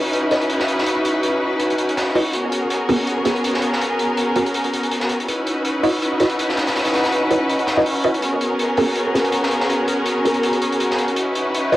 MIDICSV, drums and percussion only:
0, 0, Header, 1, 2, 480
1, 0, Start_track
1, 0, Key_signature, 5, "minor"
1, 0, Tempo, 368098
1, 1128, Time_signature, 4, 2, 24, 8
1, 15347, End_track
2, 0, Start_track
2, 0, Title_t, "Drums"
2, 174, Note_on_c, 9, 42, 87
2, 305, Note_off_c, 9, 42, 0
2, 404, Note_on_c, 9, 42, 56
2, 406, Note_on_c, 9, 38, 33
2, 535, Note_off_c, 9, 42, 0
2, 537, Note_off_c, 9, 38, 0
2, 539, Note_on_c, 9, 42, 37
2, 646, Note_off_c, 9, 42, 0
2, 646, Note_on_c, 9, 42, 74
2, 777, Note_off_c, 9, 42, 0
2, 777, Note_on_c, 9, 38, 58
2, 888, Note_on_c, 9, 42, 56
2, 907, Note_off_c, 9, 38, 0
2, 1018, Note_off_c, 9, 42, 0
2, 1022, Note_on_c, 9, 38, 47
2, 1124, Note_on_c, 9, 42, 81
2, 1152, Note_off_c, 9, 38, 0
2, 1254, Note_off_c, 9, 42, 0
2, 1367, Note_on_c, 9, 42, 65
2, 1497, Note_off_c, 9, 42, 0
2, 1604, Note_on_c, 9, 42, 72
2, 1735, Note_off_c, 9, 42, 0
2, 2081, Note_on_c, 9, 42, 73
2, 2211, Note_off_c, 9, 42, 0
2, 2220, Note_on_c, 9, 42, 40
2, 2324, Note_off_c, 9, 42, 0
2, 2324, Note_on_c, 9, 42, 58
2, 2455, Note_off_c, 9, 42, 0
2, 2463, Note_on_c, 9, 42, 43
2, 2571, Note_on_c, 9, 38, 91
2, 2573, Note_off_c, 9, 42, 0
2, 2573, Note_on_c, 9, 42, 66
2, 2702, Note_off_c, 9, 38, 0
2, 2704, Note_off_c, 9, 42, 0
2, 2806, Note_on_c, 9, 46, 71
2, 2936, Note_off_c, 9, 46, 0
2, 3041, Note_on_c, 9, 42, 74
2, 3172, Note_off_c, 9, 42, 0
2, 3285, Note_on_c, 9, 42, 64
2, 3416, Note_off_c, 9, 42, 0
2, 3524, Note_on_c, 9, 42, 83
2, 3655, Note_off_c, 9, 42, 0
2, 3766, Note_on_c, 9, 46, 73
2, 3897, Note_off_c, 9, 46, 0
2, 4005, Note_on_c, 9, 42, 78
2, 4135, Note_off_c, 9, 42, 0
2, 4236, Note_on_c, 9, 38, 31
2, 4242, Note_on_c, 9, 42, 65
2, 4367, Note_off_c, 9, 38, 0
2, 4372, Note_off_c, 9, 42, 0
2, 4382, Note_on_c, 9, 42, 37
2, 4490, Note_off_c, 9, 42, 0
2, 4490, Note_on_c, 9, 42, 83
2, 4619, Note_on_c, 9, 38, 49
2, 4621, Note_off_c, 9, 42, 0
2, 4720, Note_on_c, 9, 42, 60
2, 4749, Note_off_c, 9, 38, 0
2, 4850, Note_off_c, 9, 42, 0
2, 4863, Note_on_c, 9, 38, 47
2, 4975, Note_on_c, 9, 42, 73
2, 4993, Note_off_c, 9, 38, 0
2, 5105, Note_off_c, 9, 42, 0
2, 5207, Note_on_c, 9, 42, 57
2, 5337, Note_off_c, 9, 42, 0
2, 5441, Note_on_c, 9, 42, 80
2, 5572, Note_off_c, 9, 42, 0
2, 5680, Note_on_c, 9, 42, 62
2, 5810, Note_off_c, 9, 42, 0
2, 5819, Note_on_c, 9, 42, 42
2, 5923, Note_off_c, 9, 42, 0
2, 5923, Note_on_c, 9, 42, 70
2, 6053, Note_off_c, 9, 42, 0
2, 6053, Note_on_c, 9, 42, 38
2, 6175, Note_off_c, 9, 42, 0
2, 6175, Note_on_c, 9, 42, 61
2, 6302, Note_off_c, 9, 42, 0
2, 6302, Note_on_c, 9, 42, 44
2, 6408, Note_off_c, 9, 42, 0
2, 6408, Note_on_c, 9, 42, 75
2, 6525, Note_on_c, 9, 38, 49
2, 6539, Note_off_c, 9, 42, 0
2, 6641, Note_on_c, 9, 42, 61
2, 6655, Note_off_c, 9, 38, 0
2, 6772, Note_off_c, 9, 42, 0
2, 6782, Note_on_c, 9, 42, 40
2, 6891, Note_off_c, 9, 42, 0
2, 6891, Note_on_c, 9, 42, 72
2, 7021, Note_off_c, 9, 42, 0
2, 7129, Note_on_c, 9, 42, 57
2, 7260, Note_off_c, 9, 42, 0
2, 7364, Note_on_c, 9, 42, 75
2, 7495, Note_off_c, 9, 42, 0
2, 7608, Note_on_c, 9, 46, 65
2, 7739, Note_off_c, 9, 46, 0
2, 7850, Note_on_c, 9, 42, 71
2, 7981, Note_off_c, 9, 42, 0
2, 8080, Note_on_c, 9, 42, 69
2, 8087, Note_on_c, 9, 38, 32
2, 8208, Note_off_c, 9, 42, 0
2, 8208, Note_on_c, 9, 42, 44
2, 8218, Note_off_c, 9, 38, 0
2, 8332, Note_off_c, 9, 42, 0
2, 8332, Note_on_c, 9, 42, 79
2, 8461, Note_on_c, 9, 38, 52
2, 8462, Note_off_c, 9, 42, 0
2, 8566, Note_on_c, 9, 42, 73
2, 8574, Note_off_c, 9, 38, 0
2, 8574, Note_on_c, 9, 38, 102
2, 8696, Note_off_c, 9, 42, 0
2, 8698, Note_on_c, 9, 42, 65
2, 8701, Note_off_c, 9, 38, 0
2, 8701, Note_on_c, 9, 38, 92
2, 8809, Note_off_c, 9, 38, 0
2, 8809, Note_on_c, 9, 38, 102
2, 8812, Note_off_c, 9, 42, 0
2, 8812, Note_on_c, 9, 42, 73
2, 8932, Note_off_c, 9, 42, 0
2, 8932, Note_on_c, 9, 42, 76
2, 8934, Note_off_c, 9, 38, 0
2, 8934, Note_on_c, 9, 38, 84
2, 9049, Note_off_c, 9, 42, 0
2, 9049, Note_on_c, 9, 42, 70
2, 9053, Note_off_c, 9, 38, 0
2, 9053, Note_on_c, 9, 38, 99
2, 9177, Note_off_c, 9, 42, 0
2, 9177, Note_on_c, 9, 42, 68
2, 9183, Note_off_c, 9, 38, 0
2, 9183, Note_on_c, 9, 38, 90
2, 9287, Note_off_c, 9, 42, 0
2, 9287, Note_on_c, 9, 42, 80
2, 9313, Note_off_c, 9, 38, 0
2, 9418, Note_off_c, 9, 42, 0
2, 9526, Note_on_c, 9, 42, 69
2, 9657, Note_off_c, 9, 42, 0
2, 9773, Note_on_c, 9, 42, 71
2, 9897, Note_off_c, 9, 42, 0
2, 9897, Note_on_c, 9, 42, 44
2, 10002, Note_on_c, 9, 38, 92
2, 10010, Note_off_c, 9, 42, 0
2, 10010, Note_on_c, 9, 42, 68
2, 10132, Note_off_c, 9, 38, 0
2, 10140, Note_off_c, 9, 42, 0
2, 10248, Note_on_c, 9, 46, 65
2, 10379, Note_off_c, 9, 46, 0
2, 10482, Note_on_c, 9, 42, 62
2, 10612, Note_off_c, 9, 42, 0
2, 10617, Note_on_c, 9, 42, 41
2, 10723, Note_off_c, 9, 42, 0
2, 10723, Note_on_c, 9, 42, 81
2, 10853, Note_off_c, 9, 42, 0
2, 10966, Note_on_c, 9, 42, 60
2, 11096, Note_off_c, 9, 42, 0
2, 11205, Note_on_c, 9, 42, 82
2, 11336, Note_off_c, 9, 42, 0
2, 11439, Note_on_c, 9, 46, 72
2, 11570, Note_off_c, 9, 46, 0
2, 11678, Note_on_c, 9, 42, 82
2, 11809, Note_off_c, 9, 42, 0
2, 11930, Note_on_c, 9, 38, 37
2, 11937, Note_on_c, 9, 42, 63
2, 12057, Note_off_c, 9, 42, 0
2, 12057, Note_on_c, 9, 42, 40
2, 12060, Note_off_c, 9, 38, 0
2, 12159, Note_off_c, 9, 42, 0
2, 12159, Note_on_c, 9, 42, 76
2, 12289, Note_off_c, 9, 42, 0
2, 12299, Note_on_c, 9, 38, 57
2, 12402, Note_on_c, 9, 42, 65
2, 12429, Note_off_c, 9, 38, 0
2, 12524, Note_on_c, 9, 38, 54
2, 12532, Note_off_c, 9, 42, 0
2, 12647, Note_on_c, 9, 42, 77
2, 12655, Note_off_c, 9, 38, 0
2, 12777, Note_off_c, 9, 42, 0
2, 12882, Note_on_c, 9, 42, 69
2, 13012, Note_off_c, 9, 42, 0
2, 13115, Note_on_c, 9, 42, 72
2, 13245, Note_off_c, 9, 42, 0
2, 13372, Note_on_c, 9, 42, 61
2, 13485, Note_off_c, 9, 42, 0
2, 13485, Note_on_c, 9, 42, 43
2, 13606, Note_off_c, 9, 42, 0
2, 13606, Note_on_c, 9, 42, 76
2, 13731, Note_off_c, 9, 42, 0
2, 13731, Note_on_c, 9, 42, 44
2, 13845, Note_off_c, 9, 42, 0
2, 13845, Note_on_c, 9, 42, 68
2, 13976, Note_off_c, 9, 42, 0
2, 13983, Note_on_c, 9, 42, 43
2, 14085, Note_off_c, 9, 42, 0
2, 14085, Note_on_c, 9, 42, 72
2, 14216, Note_off_c, 9, 42, 0
2, 14223, Note_on_c, 9, 38, 50
2, 14323, Note_on_c, 9, 42, 60
2, 14354, Note_off_c, 9, 38, 0
2, 14447, Note_off_c, 9, 42, 0
2, 14447, Note_on_c, 9, 42, 40
2, 14557, Note_off_c, 9, 42, 0
2, 14557, Note_on_c, 9, 42, 83
2, 14688, Note_off_c, 9, 42, 0
2, 14805, Note_on_c, 9, 42, 63
2, 14936, Note_off_c, 9, 42, 0
2, 15055, Note_on_c, 9, 42, 88
2, 15186, Note_off_c, 9, 42, 0
2, 15290, Note_on_c, 9, 46, 73
2, 15347, Note_off_c, 9, 46, 0
2, 15347, End_track
0, 0, End_of_file